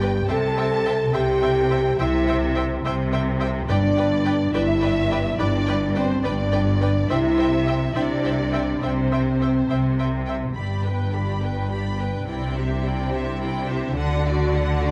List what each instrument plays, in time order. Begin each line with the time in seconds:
Already playing: double bass section G1, cello section G2, french horn section G4, violin section G5
0.01 viola section B4 D5, violin section G5
0.28 double bass section C2, cello section C3, french horn section A4, viola section C5 E5, violin section G5 A5
0.57 viola section C5 E5, violin section G5
0.86 viola section C5 E5, violin section G5
1.13 double bass section C2, cello section C3, french horn section G4, viola section C5 E5, violin section G5
1.42 viola section C5 E5, violin section G5
1.70 viola section C5 E5, violin section G5
1.99 double bass section C2, cello section C3, french horn section E4, viola section C5 E5, violin section E5 G5
2.27 viola section C5 E5, violin section G5
2.56 viola section C5 E5, violin section G5
2.84 double bass section C2, cello section C3, viola section C5 E5, violin section G5
3.12 viola section C5 E5, violin section G5
3.40 viola section C5 E5, violin section G5
3.69 double bass section G1, timpani G2, cello section G2, french horn section D4, viola section B4 D5, violin section D5 G5
3.97 viola section B4 D5, violin section G5
4.25 viola section B4 D5, violin section G5
4.54 double bass section G1, cello section G2, french horn section E4, viola section B4 D5, violin section E5 G5
4.81 viola section B4 D5, violin section G5
5.11 viola section B4 D5, violin section G5
5.39 double bass section G1, cello section G2, french horn section D4, viola section B4 D5, violin section D5 G5
5.66 viola section B4 D5, violin section G5
5.95 french horn section C4, viola section B4 D5, violin section C5 G5
6.23 double bass section G1, cello section G2, french horn section D4, viola section B4 D5, violin section D5 G5
6.52 viola section B4 D5, violin section G5
6.81 viola section B4 D5, violin section G5
7.10 double bass section C2, cello section C3, french horn section E4, viola section C5 E5, violin section E5 G5
7.38 viola section C5 E5, violin section G5
7.67 viola section C5 E5, violin section G5
7.95 double bass section C2, cello section C3, french horn section D4, viola section C5 E5, violin section D5 G5
8.24 viola section C5 E5, violin section G5
8.53 viola section C5 E5, violin section G5
8.82 double bass section C2, cello section C3, french horn section C4, viola section C5 E5, violin section C5 G5
9.11 viola section C5 E5, violin section G5
9.41 viola section C5 E5, violin section G5
9.70 double bass section C2, cello section C3, viola section C5 E5, violin section G5
9.99 viola section C5 E5, violin section G5
10.26 viola section C5 E5, violin section G5
10.55 double bass section G1, cello section G2, french horn section B3 D4, viola section G4, violin section D5 B5
10.83 violin section B4 G5, viola section B4
11.14 viola section G4, violin section D5 B5
11.42 violin section B4 G5, viola section B4
11.70 viola section G4, violin section D5 B5
11.98 violin section B4 G5, viola section B4
12.26 double bass section C2, cello section C3, french horn section D4 E4, viola section E4, violin section D5 G5
12.56 viola section G4, violin section C5 E5
12.84 viola section E4, violin section D5 G5
13.10 viola section G4, violin section C5
13.14 violin section E5
13.40 viola section E4, violin section D5 G5
13.68 viola section G4, violin section C5 E5
13.96 double bass section D2, cello section D3, viola section D4, french horn section F#4, violin section A4 F#5
14.25 violin section F#4 D5, viola section F#4
14.54 viola section D4, violin section A4 F#5
14.82 viola section F#4, violin section F#4 D5